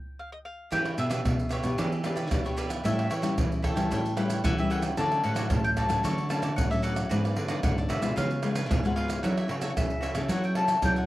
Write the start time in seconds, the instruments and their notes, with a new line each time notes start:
Already playing: mandolin G5
0.19 mandolin F5
0.32 mandolin D#5
0.45 mandolin F5
0.70 nylon-string guitar E3 D4 G4 B4, cavaquinho D4 G4 B4 E5, mandolin G5, pandeiro, tamborim, maracas, surdo
0.85 cavaquinho G4 B4 E5, pandeiro, tamborim, maracas
0.98 nylon-string guitar B2, cavaquinho D4 G4 B4 E5, mandolin E5, pandeiro, maracas
1.09 nylon-string guitar D4 G4 B4, cavaquinho D4 G4 B4 E5, pandeiro, tamborim, maracas
1.25 nylon-string guitar B2, pandeiro, tamborim, maracas, surdo
1.39 pandeiro, maracas
1.49 cavaquinho D4 G4 B4 E5, mandolin C#5, pandeiro, tamborim, maracas
1.63 nylon-string guitar B2 D4 G4 B4, cavaquinho G4 B4 E5, pandeiro, tamborim, maracas
1.78 nylon-string guitar E3, cavaquinho D4 G4 B4 E5, pandeiro, maracas, surdo
1.92 pandeiro, maracas
2.03 cavaquinho D4 G4 B4 E5, nylon-string guitar D4 G4 B4, mandolin D5, pandeiro, tamborim, maracas
2.15 cavaquinho D4 G4 B4 E5, pandeiro, tamborim, maracas
2.31 nylon-string guitar B2 D4 G4 B4, mandolin D5, pandeiro, tamborim, maracas, surdo
2.44 nylon-string guitar D4 G4 B4, cavaquinho G4 B4 E5, mandolin C#5, pandeiro, maracas
2.56 cavaquinho D4 G4 B4 E5, mandolin D5, pandeiro, maracas
2.69 cavaquinho G4 B4 E5, pandeiro, tamborim, maracas
2.84 nylon-string guitar A2 G3 C#4 E4, cavaquinho E4 A4 C#5 G5, mandolin E5, pandeiro, tamborim, maracas, surdo
2.98 cavaquinho A4 C#5 G5, pandeiro, tamborim, maracas
3.10 nylon-string guitar E3, cavaquinho E4 A4 C#5 G5, mandolin C#5, pandeiro, maracas
3.22 nylon-string guitar G3 C#4 E4, cavaquinho E4 A4 C#5 G5, pandeiro, tamborim, maracas
3.38 nylon-string guitar E3, pandeiro, tamborim, maracas, surdo
3.52 pandeiro, maracas
3.62 cavaquinho E4 A4 C#5 G5, mandolin A4, pandeiro, tamborim, surdo
3.76 nylon-string guitar E3 G3 C#4 E4, cavaquinho A4 C#5 G5, pandeiro, tamborim, maracas
3.90 nylon-string guitar A2, cavaquinho E4 A4 C#5 G5, pandeiro, maracas, surdo
4.06 pandeiro, maracas
4.17 nylon-string guitar G3 C#4 E4, cavaquinho E4 A4 C#5 G5, mandolin B4, pandeiro, tamborim, maracas
4.30 cavaquinho E4 A4 C#5 G5, pandeiro, tamborim, maracas
4.44 nylon-string guitar E3 G3 C#4 E4, mandolin F#5, pandeiro, tamborim, maracas, surdo
4.58 nylon-string guitar G3 C#4 E4, cavaquinho A4 C#5 G5, mandolin E5, pandeiro, maracas
4.70 cavaquinho E4 A4 C#5 G5, mandolin F#5, pandeiro
4.82 cavaquinho A4 C#5 G5, pandeiro, tamborim, maracas
4.97 nylon-string guitar D3 F#3 A3 C#4, cavaquinho F#4 A4 C#5 D5, mandolin A5, pandeiro, tamborim, maracas, surdo
5.12 cavaquinho A4 C#5 D5, pandeiro, tamborim, maracas
5.24 nylon-string guitar A2, cavaquinho F#4 A4 C#5 D5, mandolin F#5, pandeiro
5.35 nylon-string guitar F#3 A3 C#4, cavaquinho F#4 A4 C#5 D5, pandeiro, tamborim, maracas
5.49 nylon-string guitar A2, mandolin A5, pandeiro, tamborim, maracas, surdo
5.64 mandolin G5, pandeiro, maracas
5.77 cavaquinho F#4 A4 C#5 D5, mandolin A5, pandeiro, tamborim, maracas, surdo
5.88 nylon-string guitar A2 F#3 A3 C#4, cavaquinho A4 C#5 D5, pandeiro, tamborim, maracas
6.03 nylon-string guitar D3, cavaquinho F#4 A4 C#5 D5, mandolin C#6, pandeiro, maracas, surdo
6.18 pandeiro, maracas
6.29 nylon-string guitar F#3 A3 C#4, cavaquinho F#4 A4 C#5 D5, mandolin A5, pandeiro, tamborim, maracas
6.42 cavaquinho F#4 A4 C#5 D5, pandeiro, tamborim, maracas
6.56 nylon-string guitar A2 F#3 A3 C#4, mandolin F#5, pandeiro, tamborim, maracas, surdo
6.70 nylon-string guitar F#3 A3 C#4, cavaquinho A4 C#5 D5, mandolin E5, pandeiro, maracas
6.82 cavaquinho F#4 A4 C#5 D5, mandolin F#5, pandeiro, maracas
6.95 cavaquinho A4 C#5 D5, pandeiro, tamborim, maracas
7.09 nylon-string guitar G#2 F#3 B3 D4, cavaquinho F#4 G#4 B4 D5, pandeiro, tamborim, maracas, surdo
7.24 cavaquinho G#4 B4 D5, pandeiro, tamborim, maracas
7.36 nylon-string guitar D3, cavaquinho F#4 G#4 B4 D5, pandeiro
7.49 nylon-string guitar F#3 B3 D4, cavaquinho F#4 G#4 B4 D5, pandeiro, tamborim, maracas
7.63 nylon-string guitar G#2 D3, mandolin F#5, pandeiro, tamborim, maracas, surdo
7.78 mandolin D5, pandeiro, maracas
7.89 cavaquinho F#4 G#4 B4 D5, mandolin E5, pandeiro, tamborim, maracas, surdo
8.01 nylon-string guitar B2 G#3 B3 F4, cavaquinho G#4 B4 D5, pandeiro, tamborim, maracas
8.16 nylon-string guitar C#3, cavaquinho F4 B4 C#5 F5, mandolin F5, pandeiro, maracas, surdo
8.30 pandeiro, maracas
8.42 nylon-string guitar G#3 B3 F4, cavaquinho F4 B4 C#5 F5, pandeiro, tamborim, maracas
8.55 cavaquinho F4 B4 C#5 F5, pandeiro, tamborim, maracas
8.71 nylon-string guitar G#2 G#3 B3 F4, mandolin G#5, pandeiro, tamborim, maracas, surdo
8.83 nylon-string guitar G#3 B3 F4, cavaquinho B4 C#5 F5, mandolin F#5, pandeiro, maracas
8.96 cavaquinho F4 B4 C#5 F5, mandolin F5, pandeiro
9.08 cavaquinho B4 C#5 F5, pandeiro, tamborim, maracas
9.23 nylon-string guitar F#3 C#4 E4 A4, cavaquinho F#4 A4 C#5 E5, mandolin F#5, pandeiro, tamborim, maracas, surdo
9.37 cavaquinho A4 C#5 E5, mandolin E5, pandeiro, tamborim, maracas
9.48 nylon-string guitar C#3, cavaquinho F#4 A4 C#5 E5, mandolin C#5, pandeiro
9.61 nylon-string guitar C#4 E4 A4, cavaquinho F#4 A4 C#5 E5, pandeiro, tamborim, maracas
9.70 mandolin F#5
9.77 nylon-string guitar C#3, mandolin E5, pandeiro, tamborim, maracas, surdo
9.90 pandeiro, maracas
10.01 cavaquinho F#4 A4 C#5 E5, pandeiro, tamborim, maracas
10.14 nylon-string guitar C#3 C#4 E4 A4, cavaquinho A4 C#5 E5, pandeiro, tamborim, maracas
10.29 nylon-string guitar F#3, cavaquinho F#4 A4 C#5 E5, mandolin F#5, pandeiro, maracas, surdo
10.44 mandolin G5, pandeiro, maracas
10.55 nylon-string guitar C#4 E4 A4, cavaquinho F#4 A4 C#5 E5, mandolin A5, pandeiro, tamborim
10.67 cavaquinho F#4 A4 C#5 E5, pandeiro, tamborim, maracas
10.82 nylon-string guitar C#3 F#3 C#4 E4 A4, mandolin G5, pandeiro, tamborim, maracas, surdo
10.96 cavaquinho A4 C#5 E5, mandolin F#5, pandeiro, maracas